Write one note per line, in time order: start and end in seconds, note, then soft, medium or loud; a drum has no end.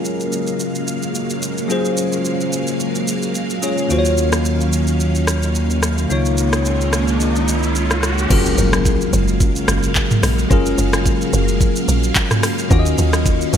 0.00 3.86 C#3 medium
0.00 1.65 F#3 medium
0.00 6.06 F#3 medium
0.00 3.86 G#3 medium
0.00 6.06 A#3 medium
0.00 1.65 C#4 medium
0.00 1.66 F4 medium
0.00 1.66 G#4 medium
0.00 1.67 A#4 medium
0.00 6.06 F5 medium
0.05 shaker medium
0.20 shaker soft
0.32 shaker medium
0.47 shaker soft
0.60 shaker medium
0.75 shaker soft
0.88 shaker medium
1.02 shaker medium
1.15 shaker medium
1.30 shaker medium
1.42 shaker medium
1.58 shaker soft
1.68 3.58 F#3 medium
1.68 3.58 C#4 medium
1.68 3.59 F4 medium
1.68 3.59 G#4 medium
1.68 3.60 C5 medium
1.68 shaker medium
1.85 shaker medium
1.97 shaker medium
2.12 shaker medium
2.25 shaker medium
2.40 shaker soft
2.52 shaker medium
2.67 shaker medium
2.80 shaker medium
2.95 shaker soft
3.08 shaker medium
3.22 shaker medium
3.35 shaker medium
3.50 shaker soft
3.62 3.90 F#3 medium
3.62 3.90 C#4 medium
3.62 3.89 F4 soft
3.62 3.90 G#4 medium
3.62 3.91 C#5 medium
3.62 shaker medium
3.78 shaker soft
3.88 6.06 D#2 medium
3.88 6.05 D#3 medium
3.88 6.08 D#3 medium
3.88 6.06 A#3 medium
3.88 6.08 C#4 medium
3.88 6.06 F4 medium
3.88 6.07 F#4 medium
3.88 3.98 C5 medium
3.88 riser medium
3.88 shaker medium
3.99 6.11 C#5 medium
4.05 shaker medium
4.17 shaker medium
4.32 cross-stick medium
4.32 shaker medium
4.45 shaker medium
4.61 shaker soft
4.73 shaker medium
4.87 shaker medium
5.00 shaker medium
5.15 shaker soft
5.27 cross-stick medium
5.27 shaker medium
5.43 shaker medium
5.55 shaker medium
5.70 shaker medium
5.83 cross-stick medium
5.83 shaker medium
5.98 shaker soft
6.08 8.26 C#2 medium
6.08 8.25 C#3 medium
6.08 8.28 D#3 medium
6.08 8.28 G#3 medium
6.08 8.26 A#3 medium
6.08 8.28 A#3 medium
6.08 8.28 C#4 medium
6.08 8.26 D#4 medium
6.08 8.28 F4 medium
6.08 8.27 F4 medium
6.08 8.27 C#5 medium
6.08 shaker medium
6.25 shaker medium
6.38 shaker medium
6.53 cross-stick medium
6.53 shaker medium
6.65 shaker medium
6.81 shaker soft
6.93 cross-stick medium
6.93 shaker medium
7.08 shaker medium
7.20 shaker medium
7.36 shaker soft
7.48 shaker medium
7.63 shaker medium
7.75 shaker medium
7.91 cross-stick medium
7.91 shaker medium
8.03 cross-stick medium
8.03 shaker medium
8.18 shaker medium
8.28 8.54 F#1 loud
8.28 12.67 C#3 medium
8.28 10.46 F#3 medium
8.28 13.57 F#3 medium
8.28 12.67 G#3 medium
8.28 13.57 A#3 medium
8.28 10.46 C#4 medium
8.28 10.47 F4 medium
8.28 10.47 G#4 medium
8.28 10.48 A#4 medium
8.28 13.57 F5 medium
8.28 kick loud
8.28 crash loud
8.28 impact medium
8.28 shaker medium
8.46 shaker medium
8.58 9.05 F#1 loud
8.58 shaker medium
8.73 cross-stick loud
8.73 shaker medium
8.85 kick loud
8.85 shaker medium
9.01 shaker medium
9.13 9.49 F#1 loud
9.13 shaker medium
9.28 shaker medium
9.40 kick loud
9.40 shaker medium
9.56 shaker medium
9.68 10.15 F#1 medium
9.68 cross-stick loud
9.68 shaker medium
9.83 shaker medium
9.95 kick loud
9.95 clap loud
9.95 shaker medium
10.11 mid tom medium
10.11 shaker medium
10.23 10.47 A#1 loud
10.23 cross-stick loud
10.23 open hi-hat medium
10.23 shaker medium
10.39 shaker medium
10.49 10.74 F#1 loud
10.49 12.66 F#3 medium
10.49 12.66 C#4 medium
10.49 12.67 F4 medium
10.49 12.67 G#4 medium
10.49 12.68 A#4 medium
10.49 kick loud
10.49 shaker medium
10.66 shaker medium
10.78 11.25 F#1 loud
10.78 shaker medium
10.93 cross-stick loud
10.93 shaker medium
11.06 kick loud
11.06 shaker medium
11.21 shaker soft
11.33 11.70 F#1 loud
11.33 shaker medium
11.48 shaker medium
11.61 kick loud
11.61 shaker medium
11.76 shaker medium
11.88 12.12 A#1 medium
11.88 shaker loud
12.03 shaker medium
12.15 kick loud
12.15 clap loud
12.15 shaker medium
12.31 cross-stick medium
12.31 mid tom medium
12.31 shaker medium
12.43 cross-stick loud
12.43 open hi-hat medium
12.43 shaker medium
12.59 shaker medium
12.69 12.94 D#2 loud
12.69 13.57 D#3 medium
12.69 13.57 C#4 medium
12.69 13.57 F4 medium
12.69 13.57 F#4 medium
12.69 12.79 D5 medium
12.69 kick loud
12.69 shaker medium
12.79 13.57 D#5 medium
12.86 shaker medium
12.98 13.45 D#2 loud
12.98 shaker medium
13.13 cross-stick medium
13.13 shaker medium
13.26 kick loud
13.26 shaker medium
13.41 shaker soft
13.53 13.57 D#2 loud
13.53 shaker medium